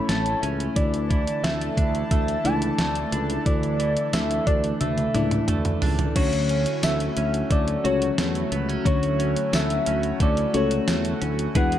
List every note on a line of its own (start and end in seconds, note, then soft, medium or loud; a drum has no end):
0.00 0.79 A2 medium
0.00 0.76 E3 medium
0.00 0.73 A3 medium
0.00 0.76 A3 medium
0.00 0.41 C#4 medium
0.00 0.79 C#4 medium
0.00 0.76 E4 medium
0.00 6.12 E4 medium
0.00 0.72 C#5 medium
0.00 0.78 C#5 medium
0.00 0.10 B5 loud
0.09 0.33 A1 medium
0.09 1.43 A3 medium
0.09 0.59 A5 loud
0.09 snare loud
0.09 closed hi-hat medium
0.26 closed hi-hat soft
0.43 0.67 C#2 loud
0.43 0.83 C#4 medium
0.43 closed hi-hat medium
0.60 closed hi-hat soft
0.76 1.25 D2 loud
0.76 1.74 D3 medium
0.76 1.09 E3 medium
0.76 6.12 E3 medium
0.76 2.01 A3 medium
0.76 2.01 D4 medium
0.76 6.12 D4 medium
0.76 2.01 E4 medium
0.76 6.12 A4 medium
0.76 1.45 D5 loud
0.76 2.02 D5 medium
0.76 6.12 A5 medium
0.76 kick loud
0.76 closed hi-hat loud
0.94 closed hi-hat medium
1.10 2.44 E3 medium
1.10 kick medium
1.10 closed hi-hat medium
1.27 closed hi-hat medium
1.44 1.68 D2 medium
1.44 2.11 A3 medium
1.44 2.11 E5 loud
1.44 snare loud
1.44 closed hi-hat medium
1.61 closed hi-hat soft
1.77 2.02 D2 loud
1.77 3.12 D4 medium
1.77 kick medium
1.77 closed hi-hat medium
1.95 closed hi-hat soft
2.11 2.35 D2 loud
2.11 2.78 A3 medium
2.11 2.47 E5 medium
2.11 kick loud
2.11 closed hi-hat medium
2.28 closed hi-hat medium
2.44 2.69 C#2 medium
2.44 3.45 E3 medium
2.44 3.38 A3 medium
2.44 3.39 D4 medium
2.44 3.39 E4 medium
2.44 3.39 D5 medium
2.44 3.13 A5 medium
2.44 closed hi-hat medium
2.62 closed hi-hat medium
2.79 3.03 D2 medium
2.79 4.13 A3 medium
2.79 snare loud
2.79 closed hi-hat medium
2.95 closed hi-hat soft
3.12 3.37 C#2 loud
3.12 4.47 D4 medium
3.12 closed hi-hat medium
3.30 closed hi-hat medium
3.46 3.95 D2 loud
3.46 4.43 D3 medium
3.46 3.78 E3 medium
3.46 4.71 A3 medium
3.46 4.71 D4 medium
3.46 4.71 E4 medium
3.46 4.15 D5 loud
3.46 4.71 D5 medium
3.46 kick loud
3.46 closed hi-hat loud
3.63 closed hi-hat soft
3.79 5.14 E3 medium
3.79 closed hi-hat medium
3.97 closed hi-hat medium
4.13 4.38 D2 loud
4.13 4.80 A3 medium
4.13 4.48 E5 loud
4.13 snare loud
4.13 closed hi-hat medium
4.13 tambourine medium
4.31 closed hi-hat medium
4.47 4.71 D2 medium
4.47 5.82 D4 medium
4.47 4.82 D5 loud
4.47 kick medium
4.47 closed hi-hat medium
4.64 closed hi-hat soft
4.80 5.05 D2 loud
4.80 5.48 A3 medium
4.80 5.82 E5 loud
4.80 closed hi-hat medium
4.80 high tom medium
4.98 closed hi-hat medium
4.98 high tom medium
5.14 5.39 C#2 medium
5.14 6.16 E3 medium
5.14 6.08 A3 medium
5.14 6.08 D4 medium
5.14 6.09 E4 medium
5.14 6.09 D5 medium
5.14 closed hi-hat medium
5.14 mid tom medium
5.31 closed hi-hat medium
5.31 mid tom medium
5.48 5.73 D2 medium
5.48 6.83 A3 medium
5.48 closed hi-hat medium
5.48 mid tom medium
5.65 closed hi-hat medium
5.65 mid tom medium
5.82 6.07 C#2 medium
5.82 6.50 D4 medium
5.82 floor tom loud
5.82 open hi-hat medium
5.99 closed hi-hat medium
5.99 floor tom medium
6.16 6.64 D2 loud
6.16 7.13 D3 medium
6.16 11.51 F#3 medium
6.16 8.84 F#3 medium
6.16 7.41 A3 medium
6.16 11.51 A3 medium
6.16 7.41 C#4 medium
6.16 11.79 F#4 medium
6.16 7.41 F#4 medium
6.16 7.83 F#4 medium
6.16 6.86 C#5 loud
6.16 7.41 C#5 medium
6.16 kick loud
6.16 closed hi-hat loud
6.16 crash loud
6.33 closed hi-hat medium
6.49 7.16 C#4 medium
6.49 closed hi-hat medium
6.66 closed hi-hat medium
6.83 7.08 D2 loud
6.83 7.50 A3 medium
6.83 7.51 E5 loud
6.83 snare loud
6.83 closed hi-hat loud
6.83 tambourine medium
7.00 closed hi-hat medium
7.17 7.41 D2 medium
7.17 8.52 C#4 medium
7.17 closed hi-hat medium
7.34 closed hi-hat soft
7.51 7.75 D2 loud
7.51 8.17 A3 medium
7.51 7.88 D5 loud
7.51 kick loud
7.51 closed hi-hat medium
7.68 closed hi-hat soft
7.84 8.09 C#2 loud
7.84 8.78 A3 medium
7.84 8.78 C#4 medium
7.84 8.85 F#4 medium
7.84 8.78 F#4 medium
7.84 8.79 C#5 medium
7.84 8.53 C#5 medium
7.84 closed hi-hat medium
8.02 closed hi-hat medium
8.18 8.42 E2 loud
8.18 9.52 A3 medium
8.18 snare loud
8.18 closed hi-hat medium
8.18 tambourine medium
8.35 closed hi-hat medium
8.52 8.76 C#2 loud
8.52 8.69 B3 medium
8.52 closed hi-hat medium
8.69 9.18 C#4 soft
8.69 closed hi-hat medium
8.85 9.34 D2 loud
8.85 9.83 D3 medium
8.85 11.55 F#3 medium
8.85 10.10 A3 medium
8.85 10.10 C#4 medium
8.85 10.11 F#4 medium
8.85 10.53 F#4 medium
8.85 10.11 C#5 medium
8.85 9.57 C#5 loud
8.85 kick loud
8.85 closed hi-hat loud
9.03 closed hi-hat medium
9.19 9.86 C#4 medium
9.19 closed hi-hat medium
9.36 closed hi-hat medium
9.53 9.77 D2 loud
9.53 10.19 A3 medium
9.53 10.24 E5 loud
9.53 snare loud
9.53 closed hi-hat loud
9.53 tambourine medium
9.70 closed hi-hat medium
9.86 10.11 D2 medium
9.86 11.20 C#4 medium
9.86 closed hi-hat medium
10.03 closed hi-hat soft
10.20 10.44 D2 loud
10.20 10.87 A3 medium
10.20 10.58 D5 loud
10.20 kick medium
10.20 closed hi-hat medium
10.37 closed hi-hat medium
10.53 10.79 C#2 medium
10.53 11.48 A3 medium
10.53 11.48 C#4 medium
10.53 11.55 F#4 medium
10.53 11.48 F#4 medium
10.53 11.48 A4 medium
10.53 11.23 C#5 medium
10.53 closed hi-hat medium
10.71 closed hi-hat medium
10.88 11.12 E2 medium
10.88 11.62 A3 medium
10.88 snare loud
10.88 closed hi-hat medium
10.88 tambourine medium
11.05 closed hi-hat soft
11.21 11.46 D2 medium
11.21 11.62 C#4 medium
11.21 closed hi-hat medium
11.39 closed hi-hat medium
11.55 11.79 E2 loud
11.55 11.79 E3 medium
11.55 11.79 G#3 medium
11.55 11.79 B3 medium
11.55 11.79 D4 medium
11.55 11.79 E4 medium
11.55 11.79 G#4 medium
11.55 11.79 B4 medium
11.55 11.79 F#5 loud
11.55 kick loud
11.55 closed hi-hat loud
11.72 closed hi-hat medium